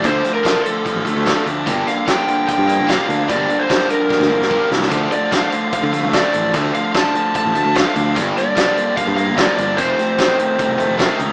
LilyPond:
<<
  \new Staff \with { instrumentName = "Lead electric guitar" } { \time 4/4 \key g \minor \tempo 4 = 148 c''8. bes'8. a'2 r8 | r8 f''8 g''4 g''4 f''4 | d''8. c''8. bes'2 r8 | r8 d''8 f''4 f''4 d''4 |
r8 f''8 a''4 a''4 f''4 | r8 d''4. f''8 f''8 d''8 d''8 | c''2. r4 | }
  \new Staff \with { instrumentName = "Overdriven electric guitar" } { \time 4/4 \key g \minor <f a d'>8 <f a>8 <f a d'>8 <f a>8 <f a>8 <f a>8 <f a d'>8 <f a>8 | <bes d' g'>8 <bes d'>8 <bes d' g'>8 <bes d'>8 <bes d'>8 <bes d'>8 <bes d' g'>8 <bes d'>8 | <bes d' g'>8 <bes d'>8 <bes d' g'>8 <bes d'>8 <bes d'>8 <bes d'>8 <bes d' g'>8 <bes d'>8 | <f a d'>8 <f a>8 <f a d'>8 <f a>8 <f a>8 <f a>8 <f a d'>8 <f a>8 |
<f a d'>8 <f a>8 <f a d'>8 <f a>8 <f a>8 <f a>8 <f a d'>8 <f a>8 | <g bes d'>8 <g bes>8 <g bes d'>8 <g bes>8 <g bes>8 <g bes>8 <g bes d'>8 <g bes>8 | <ees a c'>8 <ees a>8 <ees a c'>8 <ees a>8 <ees a>8 <ees a>8 <ees a c'>8 <ees a>8 | }
  \new Staff \with { instrumentName = "Distorted electric guitar" } { \clef bass \time 4/4 \key g \minor <d f a d'>8 f8 f8 d8 f8 a8 f8 d'8 | g,8 d8 f8 d8 f8 bes8 f8 d'8 | g,8 d8 f8 d8 f8 bes8 f8 d'8 | d8 f8 f8 d8 f8 a8 f8 d'8 |
d8 f8 f8 d8 f8 a8 f8 d'8 | g,8 d8 f8 d8 f8 bes8 f8 d'8 | f,8 c8 ees8 c8 ees8 a8 ees8 ees'8 | }
  \new Staff \with { instrumentName = "Picked electric bass" } { \clef bass \time 4/4 \key g \minor d,8 r4. r16 a,,16 d,16 d,8 r16 d,8 | g,,8 r4. r16 g,8 g,,8 r16 d,8 | g,,8 r4. r16 d,16 g,,16 g,,8 r16 c,8 | d,8 r4. r16 d8 d,8 r16 a,,8 |
d,8 r4. r16 a,,16 d,16 d,8 r16 d,8 | g,,8 r4. r16 g,8 g,,8 r16 g,,8 | f,,8 r4. r16 c,16 f,,16 f,,8 r16 cis,8 | }
  \new DrumStaff \with { instrumentName = "Drums" } \drummode { \time 4/4 <hh bd>8 <hh sn>8 <hh bd sn>8 hh8 <hh bd>8 hh8 <hh bd sn>8 hh8 | <hh bd>8 <hh sn>8 <hh bd sn>8 hh8 <hh bd>8 hh8 <hh bd sn>8 hh8 | <hh bd>8 hh8 <hh bd sn>8 hh8 <bd sn>16 sn8 sn16 bd8 sn16 sn16 | <hh bd>8 hh8 <hh bd sn>8 hh8 <hh bd>8 hh8 <hh bd sn>8 hh8 |
<hh bd>8 hh8 <hh bd sn>8 hh8 <hh bd>8 hh8 <hh bd sn>8 hh8 | <hh bd>8 <hh sn>8 <hh bd sn>8 hh8 <hh bd>8 hh8 <hh bd sn>8 hh8 | <hh bd>8 <hh sn>8 <hh bd sn>8 hh8 <hh bd>8 hh8 <hh bd sn>8 hh8 | }
>>